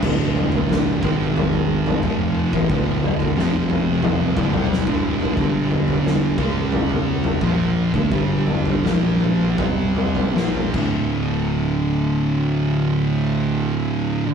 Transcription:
<<
  \new Staff \with { instrumentName = "Distorted electric guitar" } { \clef bass \time 4/4 \key d \minor \tempo 4 = 88 <d, a, d>4. <gis, dis gis>4. <f, c f>8. <a, e>16 | <d, a, d>4 <f, c f>4. <d, a,>16 <c g c'>8 <d, a, d>8. | <g, d g>4. <cis gis cis'>4. <bes, f bes>8. <d a>16 | <g, d g>4 <bes, f bes>4 <c g c'>4 <bes, f bes>8 <d, a, d>8~ |
<d, a, d>1 | }
  \new Staff \with { instrumentName = "Distorted electric guitar" } { \clef bass \time 4/4 \key d \minor <d, a, d>4. <gis, dis gis>4. <f, c f>8. <a, e>16 | <d, a, d>4 <f, c f>4. <d, a,>16 <c g c'>8 <d, a, d>8. | <g, d g>4. <cis gis cis'>4. <bes, f bes>8. <d a>16 | <g, d g>4 <bes, f bes>4 <c g c'>4 <bes, f bes>8 <d, a, d>8~ |
<d, a, d>1 | }
  \new Staff \with { instrumentName = "Fingered electric bass" } { \clef bass \time 4/4 \key d \minor d,,4. gis,,4. f,,8. a,,16 | d,,4 f,,4. d,,16 c,8 d,,8. | g,,4. cis,4. bes,,8. d,16 | g,,4 bes,,4 c,4 bes,,8 d,,8~ |
d,,1 | }
  \new DrumStaff \with { instrumentName = "Drums" } \drummode { \time 4/4 <cymc bd tomfh>8 toml16 tomfh16 <sn tomfh>8 <bd tomfh>8 <tomfh toml>16 tomfh8 <tomfh toml>16 bd8. <bd tomfh>16 | <bd tomfh>8 toml16 tomfh16 <sn tomfh>8 tomfh8 <tomfh toml>8 <bd toml>16 <tomfh toml>16 sn16 <bd tomfh>8 tomfh16 | <bd tomfh>8 toml16 tomfh16 <sn tomfh>8 <bd tomfh>8 <tomfh toml>16 tomfh8 <tomfh toml>16 bd8. <bd tomfh>16 | <bd tomfh>8 toml16 tomfh16 <sn tomfh>8 tomfh8 <bd tomfh toml>8 toml16 <tomfh toml>16 sn16 tomfh16 <cymc bd>8 |
r4 r4 r4 r4 | }
>>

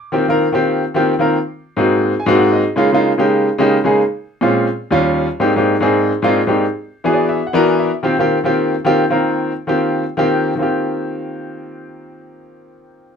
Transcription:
\new Staff \with { instrumentName = "Grand piano" } { \time 4/4 \key ees \major \tempo 4 = 182 << { r1 | r2 r8 aes''8 ges''8 ees''8 | r1 | r1 |
r1 | r4. d''8 e''8 fis''8 gis''8 e''8 | r1 | r1 |
r1 | r1 | } \\ { r16 <ees bes c' f' g'>16 r16 <ees bes c' f' bes'>8 r16 <ees bes c' f' g'>4 r16 <ees bes c' f' g'>8 r16 <ees bes c' f' bes'>8 | r4 r16 <aes, bes c' ees' ges'>4 r8 <aes, bes c' ees' ges'>4 r16 | r16 <des aes bes ees' f'>16 r16 <des aes bes ees' f'>8 r16 <des aes bes ees' g'>4 r16 <des aes bes ees' g'>8 r16 <des aes bes ees' aes'>8 | r4 r16 <bes, aes c' des' f'>8. r8. <ees, g des' f'>4 r16 |
r16 <aes, bes c' d' ees' g'>16 r16 <aes, bes c' d' ees' g'>8 r16 <aes, bes c' d' ees' aes'>4 r16 <aes, bes c' d' ees' f'>8 r16 <aes, bes c' d' ees' g'>8 | r4 r16 <e b d' fis' gis'>4 r8 <e b d' fis' bes'>4 r16 | r16 <ees bes c' f' g'>16 r16 <ees bes c' f' g'>8 r16 <ees bes c' f' g'>4 r16 <ees bes c' f' g'>8 r16 <ees bes c' f' bes'>8~ | <ees bes c' f' bes'>8. r8 <ees bes c' f' g'>4 r8 <ees bes c' f' g'>4 r16 |
<ees bes c' f' g'>1~ | <ees bes c' f' g'>1 | } >> }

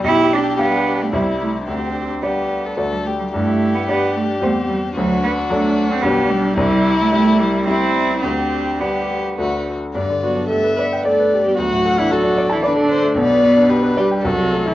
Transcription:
<<
  \new Staff \with { instrumentName = "Violin" } { \time 3/4 \key g \major \tempo 4 = 110 g'2 e'4 | g'4 g'8. a'16 a'8 g'8 | g'2. | fis'2 g'4 |
e'2 e'4 | g'4 g'4 fis'8 r8 | d''4 e''4 d''4 | fis''4 a'4 b'8 c''8 |
d''4 b'4 a'4 | }
  \new Staff \with { instrumentName = "Viola" } { \time 3/4 \key g \major g'4 d'4 e'4 | d'2~ d'8 r8 | e'4 d'4 c'4 | d'2. |
e'2 e'4 | d'2~ d'8 r8 | d'8 fis'8 a'8 b'8 a'8. g'16 | fis'8. e'16 fis'8. e'16 d'4 |
b4. g'8 fis'8. e'16 | }
  \new Staff \with { instrumentName = "Grand piano" } { \time 3/4 \key g \major b,,4 <g g' f''>4 <c, g g' e''>4 | d,4 <g g' d''>4 <d, a fis' d''>4 | g,4 <g g' d''>4 <e, g g' c''>4 | d,4 <fis d' a'>4 <b,, g d' g'>4 |
c,4 <g e' g'>4 <g e' g'>4 | d,4 <g d' g'>4 <d, a d' fis'>4 | g,16 d16 b16 d'16 g'16 b'16 d''16 g''16 d''16 b'16 g'16 b16 | d,16 a,16 a16 d'16 a'16 d'16 d''16 a''16 d''16 a'16 d'16 a16 |
b,,16 b,16 b16 d'16 g'16 b'16 d''16 g''16 c,16 c16 a16 e'16 | }
  \new Staff \with { instrumentName = "Cello" } { \time 3/4 \key g \major e'8 d'8 b8. a16 g8 a8 | c'4 b4 r16 g16 a16 g16 | a8. b16 b8 a8 a8 g8 | fis8 b8 a8. c'16 b8 g8 |
g8. a16 a8 g8 c'4 | c'4 b4. r8 | d8 fis8 a8 b8 a8. g16 | fis8. e16 fis8. e16 d4 |
b,4. g8 fis8. e16 | }
>>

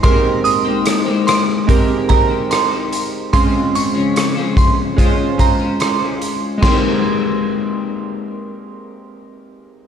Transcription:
<<
  \new Staff \with { instrumentName = "Synth bell" } { \time 4/4 \key aes \major \tempo 4 = 73 c'''8 ees'''8. r16 c'''16 r8. bes''8 c'''8. r16 | c'''8 des'''8. r16 c'''16 r8. bes''8 c'''8. r16 | c'''2. r4 | }
  \new Staff \with { instrumentName = "Clean electric guitar" } { \time 4/4 \key aes \major <bes ees' g' c''>8. <aes bes ees' g' c''>8 <aes bes ees' g' c''>8. <bes ees' g' c''>8. <ees' g' c''>8 <ees' g' c''>8. | <aes des' f' c''>8. <des f aes des' f'>8 <des f aes des' f' c''>8. <aes des' f' c''>8. <aes des' f' c''>8 <aes des' f' c''>8. | <aes bes ees' g' c''>1 | }
  \new Staff \with { instrumentName = "Synth keys" } { \time 4/4 \key aes \major <aes bes c' g' bes'>2 <aes c' g' bes'>8 <aes c' g' bes'>4. | <aes c' des' f'>2 <aes des' f' c''>8 <aes des' f' c''>4. | <aes c' g' bes'>1 | }
  \new DrumStaff \with { instrumentName = "Drums" } \drummode { \time 4/4 <hh bd>8 hh8 <hh ss>8 <hh ss>8 <hh bd>8 <hh bd>8 <hh ss>8 hh8 | <hh bd>8 hh8 <hh ss>8 <hh bd>8 <hh bd>8 <hh bd>8 <hh ss>8 hh8 | <cymc bd sn>4 r4 r4 r4 | }
>>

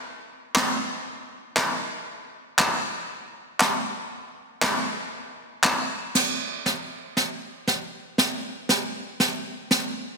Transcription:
\new DrumStaff \with { instrumentName = "Drums" } \drummode { \time 4/4 \tempo 4 = 118 r4 <hc sn>4 r4 <hc sn>4 | r4 <hc sn>4 r4 <hc sn>4 | r4 <hc sn>4 r4 <hc sn>4 | <cymc sn>4 sn4 sn4 sn4 |
sn4 sn4 sn4 sn4 | }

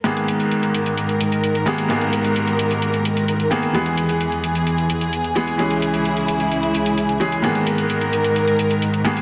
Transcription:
<<
  \new Staff \with { instrumentName = "Grand piano" } { \time 4/4 \key gis \minor \tempo 4 = 130 <gis, dis ais b gis'>2.~ <gis, dis ais b gis'>8 <gis, dis ais b gis'>8 | <gis, dis ais b gis'>2.~ <gis, dis ais b gis'>8 <dis ais b gis'>8 | <e gis b gis'>2.~ <e gis b gis'>8 <e gis b gis'>8 | <e gis cis' gis'>2.~ <e gis cis' gis'>8 <e gis cis' gis'>8 |
<gis, dis ais b gis'>2.~ <gis, dis ais b gis'>8 <gis, dis ais b gis'>8 | }
  \new Staff \with { instrumentName = "String section" } { \clef bass \time 4/4 \key gis \minor << { ais'1~ | ais'1 | gis'1~ | gis'1 |
ais'1 | } \\ { <gis, dis>1~ | <gis, dis>1 | <e, e>1 | <cis, cis e'>1 |
<gis, dis>1 | } >> }
  \new DrumStaff \with { instrumentName = "Drums" } \drummode { \time 4/4 hh16 hh16 hh16 hh16 hh16 hh16 hh16 hh16 hh16 hh16 hh16 hh16 hh16 hh16 hh16 hh16 | hh16 hh16 hh16 hh16 hh16 hh16 hh16 hh16 hh16 hh16 hh16 hh16 hh16 hh16 hh16 hh16 | hh16 hh16 hh16 hh16 hh16 hh16 hh16 hh16 hh16 hh16 hh16 hh16 hh16 hh16 hh16 hh16 | hh16 hh16 hh16 hh16 hh16 hh16 hh16 hh16 hh16 hh16 hh16 hh16 hh16 hh16 hh16 hh16 |
hh16 hh16 hh16 hh16 hh16 hh16 hh16 hh16 hh16 hh16 hh16 hh16 hh16 hh16 hh16 hh16 | }
>>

